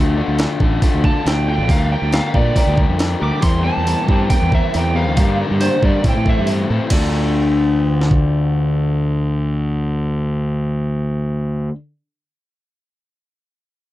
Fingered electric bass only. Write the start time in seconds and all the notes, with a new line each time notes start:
Already playing: D2
0.28 D2
0.61 A1
0.94 D2
1.26 D2
1.58 A1
1.69 D2
2.02 D2
2.34 A#2
2.67 D2
2.89 F2
3.22 D2
3.43 E2
3.77 E2
4.09 G2
4.42 E2
4.75 E2
5.08 D2
5.17 G2
5.51 G2
5.83 G2
6.04 A2
6.17 A2
6.39 G2
6.70 A2
6.91 D2